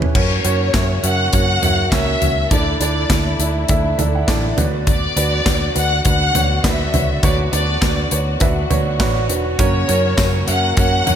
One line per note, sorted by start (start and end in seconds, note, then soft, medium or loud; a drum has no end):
0.00 0.15 C#4 medium
0.00 0.18 E4 medium
0.00 0.18 G4 medium
0.00 0.17 A4 medium
0.00 0.18 B4 medium
0.00 floor tom medium
0.15 0.39 F#2 medium
0.15 2.49 C#3 medium
0.15 2.49 A#3 medium
0.15 0.40 C#4 medium
0.15 0.41 F#4 medium
0.15 2.49 F#4 medium
0.15 0.41 A#4 medium
0.15 0.41 C#5 medium
0.15 1.01 C#5 medium
0.15 kick loud
0.15 crash medium
0.44 0.69 F#2 medium
0.44 0.70 C#4 medium
0.44 0.70 F#4 medium
0.44 0.70 A#4 medium
0.44 0.70 C#5 medium
0.44 closed hi-hat medium
0.74 0.98 F#2 medium
0.74 1.00 C#4 medium
0.74 1.00 F#4 medium
0.74 1.00 A#4 medium
0.74 1.00 E5 medium
0.74 kick medium
0.74 snare medium
0.74 clap medium
0.74 closed hi-hat medium
1.03 1.28 F#2 medium
1.03 1.29 C#4 medium
1.03 1.29 F#4 medium
1.03 1.29 A#4 medium
1.03 1.29 E5 medium
1.03 1.33 F#5 medium
1.03 closed hi-hat medium
1.33 1.57 F#2 loud
1.33 1.59 C#4 medium
1.33 1.59 F#4 medium
1.33 1.59 A#4 medium
1.33 1.59 C#5 medium
1.33 1.89 F#5 loud
1.33 kick medium
1.33 closed hi-hat medium
1.62 1.87 F#2 medium
1.62 1.88 C#4 medium
1.62 1.88 F#4 medium
1.62 1.89 A#4 medium
1.62 1.89 E5 medium
1.62 closed hi-hat medium
1.62 floor tom medium
1.92 2.16 C#2 medium
1.92 2.18 C#4 medium
1.92 2.18 F#4 medium
1.92 2.18 A#4 medium
1.92 2.47 E5 medium
1.92 2.18 E5 loud
1.92 kick loud
1.92 snare loud
1.92 clap medium
1.92 closed hi-hat medium
2.22 2.46 C#2 medium
2.22 2.47 C#4 medium
2.22 2.47 F#4 medium
2.22 2.48 A#4 medium
2.22 2.48 E5 medium
2.22 closed hi-hat medium
2.22 floor tom medium
2.51 2.75 D2 medium
2.51 9.55 D3 medium
2.51 3.36 D3 medium
2.51 4.56 A3 medium
2.51 2.77 D4 medium
2.51 2.77 E4 medium
2.51 4.56 E4 medium
2.51 2.77 A4 medium
2.51 2.79 D5 medium
2.51 2.77 D5 medium
2.51 kick loud
2.51 closed hi-hat medium
2.80 3.05 D2 medium
2.80 3.06 D4 medium
2.80 3.06 E4 medium
2.80 3.07 A4 medium
2.80 3.36 D5 medium
2.80 3.07 D5 loud
2.80 closed hi-hat medium
3.10 3.34 D2 medium
3.10 3.36 D4 medium
3.10 3.36 E4 medium
3.10 3.36 A4 medium
3.10 3.36 D5 medium
3.10 kick loud
3.10 snare loud
3.10 clap medium
3.10 closed hi-hat medium
3.39 3.63 D2 medium
3.39 3.65 D4 medium
3.39 3.65 E4 medium
3.39 3.65 A4 medium
3.39 3.65 E5 medium
3.39 closed hi-hat medium
3.68 3.94 D2 loud
3.68 3.94 D4 medium
3.68 3.95 E4 medium
3.68 3.95 A4 medium
3.68 3.95 E5 medium
3.68 kick loud
3.68 closed hi-hat medium
3.98 4.23 D2 medium
3.98 4.24 D4 medium
3.98 4.24 E4 medium
3.98 4.24 A4 medium
3.98 4.24 E5 medium
3.98 4.14 A5 medium
3.98 closed hi-hat medium
3.98 floor tom medium
4.15 4.27 F#5 medium
4.27 4.52 A1 medium
4.27 4.53 D4 loud
4.27 4.53 E4 medium
4.27 4.54 A4 medium
4.27 4.54 D5 loud
4.27 4.55 E5 medium
4.27 kick loud
4.27 snare loud
4.27 clap medium
4.27 closed hi-hat medium
4.57 5.06 D2 medium
4.57 5.42 D3 medium
4.57 9.55 B3 medium
4.57 5.08 D4 medium
4.57 5.08 F#4 medium
4.57 11.15 F#4 medium
4.57 5.09 B4 medium
4.57 4.65 C#5 medium
4.57 4.63 D5 medium
4.57 closed hi-hat medium
4.57 floor tom medium
4.64 5.12 D5 medium
4.87 5.72 D5 medium
4.87 kick medium
4.87 closed hi-hat medium
5.16 5.41 D2 medium
5.16 5.42 D4 medium
5.16 5.42 F#4 medium
5.16 5.42 B4 medium
5.16 5.42 D5 medium
5.16 closed hi-hat medium
5.46 5.70 D2 medium
5.46 5.71 D4 medium
5.46 5.72 F#4 medium
5.46 5.72 B4 medium
5.46 5.72 D5 medium
5.46 kick loud
5.46 snare medium
5.46 clap medium
5.46 closed hi-hat medium
5.75 6.00 D2 medium
5.75 6.01 D4 medium
5.75 6.01 F#4 medium
5.75 6.01 B4 medium
5.75 6.01 D5 medium
5.75 6.03 F#5 medium
5.75 closed hi-hat medium
6.04 6.30 D2 loud
6.04 6.30 D4 medium
6.04 6.31 F#4 medium
6.04 6.31 B4 medium
6.04 6.31 D5 medium
6.04 6.60 F#5 loud
6.04 kick medium
6.04 closed hi-hat medium
6.34 6.59 D2 medium
6.34 6.60 D4 medium
6.34 6.60 F#4 medium
6.34 6.60 B4 medium
6.34 6.61 C#5 medium
6.34 closed hi-hat medium
6.34 floor tom medium
6.64 6.88 D2 medium
6.64 6.90 D4 medium
6.64 6.90 F#4 medium
6.64 6.90 B4 medium
6.64 6.90 D5 loud
6.64 7.19 E5 medium
6.64 kick loud
6.64 snare loud
6.64 clap medium
6.64 closed hi-hat medium
6.94 7.18 C#2 medium
6.94 7.78 D3 medium
6.94 7.19 D4 medium
6.94 7.19 F#4 medium
6.94 7.19 B4 medium
6.94 7.20 C#5 medium
6.94 closed hi-hat medium
6.94 floor tom medium
7.23 7.47 D2 loud
7.23 7.49 D4 medium
7.23 7.49 F#4 medium
7.23 7.49 B4 medium
7.23 7.49 C#5 loud
7.23 7.37 D5 medium
7.23 kick loud
7.23 closed hi-hat medium
7.52 7.77 D2 medium
7.52 7.78 D4 medium
7.52 7.78 F#4 medium
7.52 7.78 B4 medium
7.52 7.78 D5 medium
7.52 8.08 D5 medium
7.52 closed hi-hat medium
7.82 8.06 D2 medium
7.82 8.07 D4 medium
7.82 8.08 F#4 medium
7.82 8.08 B4 medium
7.82 8.08 D5 medium
7.82 kick loud
7.82 snare loud
7.82 clap medium
7.82 closed hi-hat medium
8.11 8.36 D2 medium
8.11 8.37 D4 medium
8.11 8.37 F#4 medium
8.11 8.37 B4 medium
8.11 8.37 C#5 medium
8.11 closed hi-hat medium
8.40 8.65 D2 medium
8.40 8.66 D4 medium
8.40 8.66 F#4 medium
8.40 8.67 B4 medium
8.40 8.67 E5 medium
8.40 kick medium
8.40 closed hi-hat medium
8.70 9.01 D2 medium
8.70 8.96 D4 medium
8.70 8.96 F#4 medium
8.70 8.96 B4 medium
8.70 8.96 C#5 medium
8.70 closed hi-hat medium
8.70 floor tom medium
8.99 9.30 A1 medium
8.99 9.25 D4 loud
8.99 9.25 F#4 loud
8.99 9.26 B4 medium
8.99 9.26 C#5 loud
8.99 kick loud
8.99 snare loud
8.99 clap medium
8.99 closed hi-hat medium
9.29 9.54 E1 medium
9.29 9.55 D4 medium
9.29 9.55 F#4 medium
9.29 9.55 B4 medium
9.29 9.55 D5 medium
9.29 closed hi-hat medium
9.59 9.88 F#2 medium
9.59 9.83 F#2 loud
9.59 9.89 C#3 medium
9.59 11.15 C#3 medium
9.59 9.89 F#3 medium
9.59 11.15 A#3 medium
9.59 9.89 A#3 medium
9.59 9.84 C#4 medium
9.59 9.88 C#4 medium
9.59 9.85 F#4 medium
9.59 9.85 A#4 medium
9.59 9.87 A#4 medium
9.59 9.85 C#5 loud
9.59 10.44 C#5 medium
9.59 kick loud
9.59 closed hi-hat medium
9.88 10.13 F#2 medium
9.88 10.17 F#3 medium
9.88 10.18 A#3 medium
9.88 10.14 C#4 medium
9.88 10.18 C#4 medium
9.88 10.14 F#4 medium
9.88 10.18 A#4 medium
9.88 10.14 A#4 medium
9.88 10.14 C#5 medium
9.88 closed hi-hat medium
10.18 10.47 F#2 medium
10.18 10.42 F#2 medium
10.18 10.48 C#3 medium
10.18 10.48 F#3 medium
10.18 10.47 A#3 medium
10.18 10.43 C#4 medium
10.18 10.47 C#4 medium
10.18 10.43 F#4 medium
10.18 10.44 A#4 medium
10.18 10.46 A#4 medium
10.18 10.44 C#5 medium
10.18 kick loud
10.18 snare medium
10.18 clap medium
10.18 closed hi-hat medium
10.18 tambourine medium
10.47 10.72 F#2 medium
10.47 10.75 F#3 soft
10.47 10.76 A#3 soft
10.47 10.73 C#4 medium
10.47 10.77 C#4 medium
10.47 10.73 F#4 medium
10.47 10.77 A#4 medium
10.47 10.73 A#4 medium
10.47 10.73 E5 medium
10.47 10.75 F#5 medium
10.47 closed hi-hat medium
10.76 11.02 F#2 loud
10.76 11.06 F#3 medium
10.76 11.06 A#3 medium
10.76 11.02 C#4 medium
10.76 11.06 C#4 medium
10.76 11.03 F#4 medium
10.76 11.03 A#4 medium
10.76 11.05 A#4 medium
10.76 11.03 C#5 medium
10.76 11.15 F#5 loud
10.76 kick loud
10.76 closed hi-hat medium
11.06 11.15 F#2 medium
11.06 11.15 F#3 soft
11.06 11.15 A#3 soft
11.06 11.15 C#4 medium
11.06 11.15 F#4 medium
11.06 11.15 A#4 medium
11.06 11.15 C#5 medium
11.06 closed hi-hat medium
11.06 floor tom medium